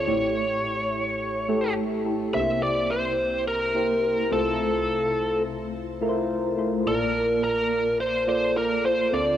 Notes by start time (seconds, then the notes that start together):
Already playing: C#5
0.07 A1 A2 A3 E4 G4 C#5
1.49 A3 E4 G4 A4
2.05 A3 E4 G4 A4
2.33 C2 C3 A#3 D4 G4 C5 E5
2.40 E4
2.63 D5
2.91 C5
3.48 A#4
3.75 A#3 E4 G4 C5
4.31 C2 C3 A3 E4 F4 A4 C5
6.01 A3 E4 F4 A#4
6.09 C5
6.57 A3 E4 F4 C5
6.86 A#1 A#2 A#3 F4 A#4 D5 A5
7.44 A#4
8.00 C5
8.27 A#3 F4 A4 C5 D5
8.57 A#4
8.84 A#3 F4 A4 C5
9.12 D2 D3 C4 F4 A4 D5